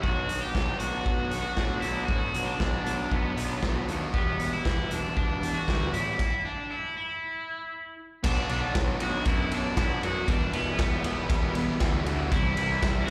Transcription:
0.03 B1 B2 F#3 B3 D4 F#4, kick
0.28 B3 D4 F#4, closed hi-hat
0.41 G4
0.53 B1 B2 F#3 B3 D4 F#4, kick, snare
0.79 B1 F#4, closed hi-hat
1.06 B1, kick
1.31 B3 D4 F#4, closed hi-hat
1.42 F#4
1.57 A2 F#3 B3 D4, kick, snare
1.61 F#4
1.81 B1 E4 F#4, closed hi-hat
1.85 B3 D4
2.06 A2 B2 F#4, kick
2.10 F#3 B3 D4 F#4
2.34 B1 B3 D4 F#4, closed hi-hat
2.46 D4
2.60 B1 B2 F#3 B3 D4 F#4, kick, snare
2.85 B1 D4, closed hi-hat
3.10 B1 B3, kick
3.37 B1 B3 D4 F#4, closed hi-hat
3.61 B1 F#3 B3 D4 F#4, kick, snare
3.87 D#2 B3 D4 F#4, closed hi-hat
4.13 E1 E2 B2 E3 G3 B3 G4, kick
4.39 E3 G3 B3 G4, closed hi-hat
4.53 E4
4.64 E1 E2 B2 E3 G3 B3 G4, kick, snare
4.91 E1 D4, closed hi-hat
5.17 E1 D4, kick
5.42 E3 G3 B3 G4, closed hi-hat
5.55 F#4
5.67 D2 E3 G3 B3 G4, kick, snare
5.93 A1 E3 G3 B3 E4 G4, closed hi-hat
6.19 kick, crash
6.45 D4
6.71 E4
6.97 E4
8.23 B1 B2 F#3 B3 D4 F#4, kick, crash
8.49 B1 B2 F#3 B3 D4 F#4, ride
8.74 B1 B2 F#3 B3 D4 F#4, kick, snare, ride
9.00 B1 B2 F#3 B3 D4 F#4, ride
9.25 F#2 B2 F#3 B3 D4 E4 F#4, kick, ride
9.51 B2 F#3 B3 D4 F#4, ride
9.77 B1 B2 F#3 B3 D4 E4 F#4, kick, snare, ride
10.03 F#2 B2 F#3 B3 D4 F#4, ride
10.28 E1 E2 B2 E3 G3 B3 D4 E4, kick, ride
10.53 E1 E2 B2 E3 G3 B3 E4, ride
10.79 E1 E2 B2 E3 G3 B3 E4, kick, snare, ride
11.04 E1 E2 B2 E3 G3 B3 E4, ride
11.29 E1 E2 B2 E3 G3 B3 E4, kick, ride
11.55 E2 B2 E3 G3 B3 E4, ride
11.80 D2 E2 B2 E3 G3 B3 E4, kick, snare, ride
12.05 D2 E2 B2 E3 G3 B3 E4, ride
12.31 C2 C3 E3 G3 C4 E4, kick, ride
12.57 C2 C3 E3 G3 C4 E4, ride
12.81 C2 C3 E3 G3 C4 E4, kick, snare, ride
13.02 E4
13.06 F#4

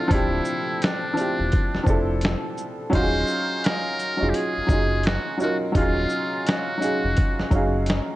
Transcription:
Already playing: F3 C4 D4 E4 F4 G4 A4
0.08 D1 F3 C4 D4, kick, closed hi-hat
0.12 E4 G4
0.45 shaker
0.82 D4, snare, closed hi-hat
1.14 F3 C4 D4, closed hi-hat, shaker
1.19 E4 G4
1.40 E1
1.52 kick, closed hi-hat
1.75 F1, snare
1.84 F1 F3 C4 D4, kick, shaker
1.88 E4 A4
2.21 snare, closed hi-hat
2.57 shaker
2.89 D#1 F#3 C#4 D#4, kick, closed hi-hat
2.94 F4 F#4 C5
3.02 G#4
3.27 shaker
3.64 A#4, snare, closed hi-hat
3.99 closed hi-hat, shaker
4.17 F#3 C#4 D#4
4.22 F1 F4 G#4
4.30 G4
4.34 G#4, closed hi-hat
4.57 F#1
4.66 F#1 F#3 C#4 D#4, kick, shaker
4.71 F4 G#4
5.03 F#4, snare, closed hi-hat
5.38 F#3 C#4 D#4, shaker
5.42 F4 F#4 A#4
5.72 D#1 F#3 C#4 D#4, kick, closed hi-hat
5.77 F4 G#4
6.09 shaker
6.46 F#4, snare, closed hi-hat
6.78 F#3 C#4 D#4
6.82 G#4 F5, closed hi-hat, shaker
7.04 F1
7.17 kick, closed hi-hat
7.39 F#1, snare
7.50 F#1 F#3 C#4 D#4, kick, closed hi-hat, shaker
7.55 G#4 F5
7.86 snare, closed hi-hat

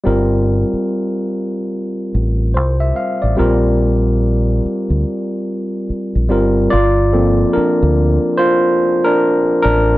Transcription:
0.04 G1 G3 C4 F4 A#4
0.73 muted fingered electric bass stroke
2.15 A1
2.54 C2 C5
2.80 E5
2.96 F5
3.22 A1 D5
3.37 A#1 G3 C4 F4 A#4
4.65 muted fingered electric bass stroke
4.90 D2
5.90 muted fingered electric bass stroke
6.15 A#1
6.29 G1 G3 C4 F4 A#4
6.70 G1 F4 D5
7.13 F3 A#3 C4 A4
7.53 D4 A#4, muted fingered electric bass stroke
7.83 D2
8.38 F4 C5
9.04 D4 A#4
9.63 A1 D4 A#4

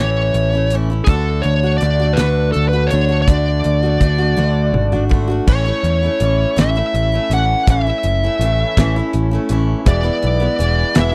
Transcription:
Already playing: A1 A2 C#5
0.00 E3 A3 C#4 E4
0.34 A1, closed hi-hat
0.53 A3 C#4 E4
0.70 E3 A3 C#4, closed hi-hat
0.75 E4
0.90 A3 C#4 E4
1.04 D2 D3 A4, kick, closed hi-hat
1.09 A3 D4 F#4
1.42 D2 C#5, closed hi-hat
1.63 A3 D4 F#4
1.78 D5, closed hi-hat
1.82 D2 D3 A3 D4 F#4
2.00 A3 D4 F#4
2.13 B4, closed hi-hat
2.17 D2 D3 A3 D4 F#4, snare
2.52 D2 A4, closed hi-hat
2.69 B4
2.73 A3 D4 F#4
2.87 D3 C#5, closed hi-hat
2.92 D2 A3 D4 F#4
3.09 A3 D4 F#4
3.22 D5
3.28 D2 D3 A3 D4 F#4, kick, closed hi-hat
3.64 D2, closed hi-hat
3.83 A3 D4 F#4
4.00 D2 D3 A3 D4 F#4, kick, closed hi-hat
4.18 A3 D4 F#4
4.37 D2 D3 A3 D4 F#4, high tom
4.73 G#1, mid tom
4.92 A3 D4 F#4, mid tom
5.09 D3 A3 D4, kick
5.13 F#4
5.28 A3 D4 F#4
5.46 A1 A2 E3 A3 C#4 E4 C#5, kick, crash
5.50 E4
5.65 A3 C#4 E4
5.83 E2, closed hi-hat
6.03 A3 C#4 E4
6.20 A1 E3 A3 C#4 E4, closed hi-hat
6.56 A1 A2 E3 A3 C#4 E4 E5, snare, closed hi-hat
6.75 A3 C#4 E4
6.94 A1, closed hi-hat
7.12 A3 C#4 E4
7.30 A1 E3 A3 C#4 E4 F#5, closed hi-hat
7.67 A1 A2 E3 A3 C#4 E4 E5, kick, closed hi-hat
7.87 A3 C#4 E4
8.03 F#1, closed hi-hat
8.24 A3 C#4 E4
8.39 A1 E3 A3, closed hi-hat
8.44 C#4 E4
8.77 A1 A2 E3 A3 C#4 E4, kick, snare, closed hi-hat
8.96 A3 C#4 E4
9.13 A1, closed hi-hat
9.31 A3 C#4 E4
9.49 A1 E3 A3 C#4 E4, closed hi-hat
9.85 E1 E2 B2 E3 G#3 B3 E4 G#4 B4 D5 E5, kick, closed hi-hat
10.03 E3 G#3 B3 E4
10.23 B1, closed hi-hat
10.40 E3 G#3 B3 E4
10.59 E1 E3 G#3 B3 E4, closed hi-hat
10.94 E1 E2 B2 E3 G#3 B3 E4 G#4 B4 E5, snare, closed hi-hat
11.00 E5

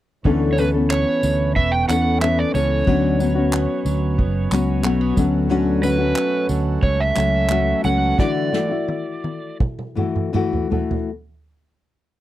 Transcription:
0.24 D2 D3 E3 A3 B3 C#4 A4 B4 C#5, kick
0.53 C#5
0.57 E3 B3 C#4 A4 B4, tambourine
0.74 B3 C#4 A4
0.91 B3 C#5, clap
1.23 D2 E3, tambourine
1.56 E1 B3 E5, kick
1.72 G5
1.88 E2 E3 B3 C#4 A4 F#5, clap, tambourine
2.21 E3 B3 C#4 A4 E5, clap
2.39 D5
2.53 C#2 E3 B3 C#4 A4 C#5, tambourine
2.86 D2 B2 D3 F#3 B3 C#4 F#4 B4, kick
3.19 F#3 B3 C#4 F#4, tambourine
3.35 B3 C#4 F#4
3.53 B3, clap
3.85 D2 F#3, tambourine
4.18 F#1 B3, kick
4.51 C#2 F#3 B3 C#4 F#4, clap, tambourine
4.83 B1 F#3 A3 B3 C#4 F#4, clap
5.01 B3
5.16 D2 F#3 A3 C#4 F#4 A4, kick, tambourine
5.49 D3 F#3 A3 C#4 F#4
5.82 F#3 A3 C#4 F#4 B4, tambourine
5.98 A3 C#4 F#4
6.16 A3, clap
6.49 D2 F#3, tambourine
6.83 C#2 A3 C#5, kick
7.00 E5
7.15 C#2 F#3 A3 C#4 F#4, clap, tambourine
7.49 F#3 A3 C#4 F#4, clap
7.83 C#2 F#3 A3 C#4 F#4 F#5, tambourine
8.17 D3 E3 A3 E4 F#4 D5, kick, snare
8.52 E3 A3 E4 F#4, snare
8.69 A3 E4 F#4
8.88 high tom
9.24 high tom
9.60 kick, mid tom
9.79 mid tom
9.95 E3 A3 E4 F#4, mid tom
10.16 mid tom
10.33 E3 A3 E4 F#4, mid tom
10.53 floor tom
10.70 E3 A3 E4 F#4, floor tom
10.91 floor tom

